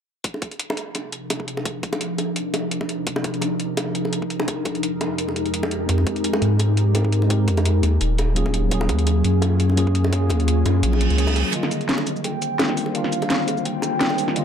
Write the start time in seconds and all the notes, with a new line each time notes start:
0.24 C3 F3 D4 D#4 A#4, kick, closed hi-hat
0.34 high bongo
0.42 kick, closed hi-hat
0.51 closed hi-hat
0.59 closed hi-hat
0.70 high bongo
0.77 closed hi-hat
0.95 closed hi-hat, high bongo
1.12 closed hi-hat
1.30 closed hi-hat, high bongo
1.40 kick
1.48 closed hi-hat
1.57 high bongo
1.65 kick, closed hi-hat
1.83 kick, closed hi-hat
1.93 closed hi-hat, high bongo
2.01 closed hi-hat
2.18 closed hi-hat, high bongo
2.36 closed hi-hat
2.54 closed hi-hat, high bongo
2.71 closed hi-hat
2.81 kick, high bongo
2.89 closed hi-hat
3.07 kick, closed hi-hat
3.16 high bongo
3.24 kick, closed hi-hat
3.34 closed hi-hat
3.42 closed hi-hat, high bongo
3.60 closed hi-hat
3.77 closed hi-hat, high bongo
3.95 closed hi-hat
4.05 high bongo
4.13 closed hi-hat
4.22 kick
4.30 closed hi-hat
4.40 high bongo
4.48 F2 G#3 G4, kick, closed hi-hat
4.65 kick, closed hi-hat, high bongo
4.75 closed hi-hat
4.83 closed hi-hat
5.01 closed hi-hat, high bongo
5.18 closed hi-hat
5.28 high bongo
5.36 closed hi-hat
5.46 closed hi-hat
5.54 closed hi-hat
5.63 kick, high bongo
5.71 closed hi-hat
5.86 F2 G#3 C4 D#4, kick, closed hi-hat
5.91 G4 A#4
5.98 high bongo
6.07 kick, closed hi-hat
6.16 closed hi-hat
6.24 closed hi-hat
6.33 high bongo
6.42 G#2, closed hi-hat
6.59 closed hi-hat, high bongo
6.77 closed hi-hat
6.93 G#3 C4 D#4 G4 A#4, closed hi-hat, high bongo
7.04 kick
7.12 closed hi-hat
7.22 high bongo
7.27 G#3 C4 D#4, kick, closed hi-hat
7.32 G4 A#4
7.48 F2, kick, closed hi-hat
7.57 closed hi-hat, high bongo
7.65 closed hi-hat
7.83 D#2 F#3 C#4 F4 G#4, closed hi-hat, high bongo
8.01 D#1, closed hi-hat
8.18 closed hi-hat, high bongo
8.35 F#3 A#3 C#4 F4 G#4, closed hi-hat
8.46 kick, high bongo
8.54 closed hi-hat
8.69 F#3 A#3 C#4, kick, closed hi-hat
8.73 F4 G#4
8.81 high bongo
8.89 D#2, kick, closed hi-hat
8.99 closed hi-hat
9.07 closed hi-hat, high bongo
9.24 F#2, closed hi-hat
9.42 closed hi-hat, high bongo
9.60 closed hi-hat
9.69 high bongo
9.76 F#3 A#3 C#4 F4 G#4, closed hi-hat
9.87 kick
9.95 closed hi-hat
10.04 high bongo
10.10 F#3 A#3 C#4, kick, closed hi-hat
10.14 F4 G#4
10.30 D#2, kick, closed hi-hat, high bongo
10.40 closed hi-hat
10.48 closed hi-hat
10.66 F#2, closed hi-hat, high bongo
10.83 A#1, closed hi-hat, reverse cymbal
10.93 high bongo
11.01 closed hi-hat
11.10 C#2, closed hi-hat
11.17 F#3 A#3 C#4 F4 G#4, closed hi-hat
11.27 kick, closed hi-hat, high bongo
11.36 closed hi-hat
11.51 D#3 G3 A#3 C4 F4 C5 D#5, closed hi-hat, riser
11.55 D3 F4
11.63 snare, high bongo
11.71 closed hi-hat, cabasa
11.81 closed hi-hat
11.89 snare, closed hi-hat
11.98 high bongo
12.07 closed hi-hat, cabasa
12.16 cabasa
12.24 G5, closed hi-hat, high bongo
12.42 closed hi-hat, cabasa
12.58 D#3 G3 A#3 D4 F4, snare, closed hi-hat, high bongo
12.69 snare
12.77 open hi-hat, cabasa
12.86 high bongo
12.92 D#3 G3 A#3 F5, closed hi-hat
12.96 D4 F4
13.04 snare
13.12 closed hi-hat, cabasa
13.22 closed hi-hat, high bongo
13.30 snare, closed hi-hat
13.48 closed hi-hat, high bongo, cabasa
13.57 cabasa
13.65 G5, closed hi-hat
13.82 closed hi-hat, high bongo, cabasa
13.99 D#3 G3 A#3 D4 F4, snare, closed hi-hat
14.10 high bongo
14.18 open hi-hat, cabasa
14.28 snare
14.33 D#3 G3 A#3 D#5, closed hi-hat
14.38 D3 F4